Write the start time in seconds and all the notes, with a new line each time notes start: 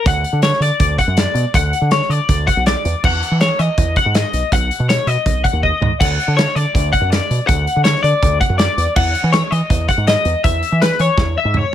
0.06 D2 F#5, kick, closed hi-hat
0.24 closed hi-hat
0.33 D3
0.42 C#5, snare, closed hi-hat
0.53 snare
0.60 D3 D5, closed hi-hat
0.80 D2, kick, closed hi-hat
0.98 F#5, kick, closed hi-hat
1.07 F#2
1.17 D5, snare, closed hi-hat
1.34 B2, closed hi-hat
1.54 D2 F#5, kick, closed hi-hat
1.73 closed hi-hat
1.81 D3
1.91 C#5, snare, closed hi-hat
2.02 snare
2.09 D3 D5, closed hi-hat
2.29 D2, kick, closed hi-hat
2.47 F#5, kick, closed hi-hat
2.57 B1
2.66 D5, snare, closed hi-hat
2.85 E2, closed hi-hat
3.04 E2 F#5, kick, crash
3.23 closed hi-hat
3.31 E3
3.41 C#5, snare, closed hi-hat
3.59 E3 D#5, closed hi-hat
3.78 E2, kick, closed hi-hat
3.96 F#5, kick, closed hi-hat
4.06 G#2
4.14 D#5, snare, closed hi-hat
4.33 B1, closed hi-hat
4.52 B1 F#5, kick, closed hi-hat
4.71 closed hi-hat
4.80 B2
4.89 C#5, snare, closed hi-hat
5.07 B2 D#5, closed hi-hat
5.26 B1, kick, closed hi-hat
5.44 F#5, kick, closed hi-hat
5.53 D#2
5.63 D#5, kick
5.81 G#2, floor tom
6.00 D2 F#5, kick, closed hi-hat, crash
6.20 closed hi-hat
6.28 D3
6.37 C#5, snare, closed hi-hat
6.48 snare
6.55 D3 D5, closed hi-hat
6.74 D2, kick, closed hi-hat
6.93 F#5, kick, closed hi-hat
7.01 F#2
7.10 D5, snare, closed hi-hat
7.30 B2, closed hi-hat
7.47 D2 F#5, kick, closed hi-hat
7.67 closed hi-hat
7.76 D3
7.84 C#5, snare, closed hi-hat
7.96 snare
8.03 D3 D5, closed hi-hat
8.23 D2, kick, closed hi-hat
8.41 F#5, kick, closed hi-hat
8.49 F#2
8.58 D5, snare, closed hi-hat
8.77 E2, closed hi-hat
8.96 E2 F#5, kick, crash
9.15 closed hi-hat
9.24 E3
9.32 C#5, snare, closed hi-hat
9.51 E3 D#5, closed hi-hat
9.70 E2, kick, closed hi-hat
9.88 F#5, kick, closed hi-hat
9.98 G#2
10.07 D#5, snare, closed hi-hat
10.25 E2, closed hi-hat
10.44 E2 E5, kick, closed hi-hat
10.63 closed hi-hat
10.72 E3
10.82 B4, snare, closed hi-hat
10.92 snare
10.99 E3 C#5, closed hi-hat
11.17 E2, kick, snare
11.38 E5
11.45 G#2
11.54 C#5, mid tom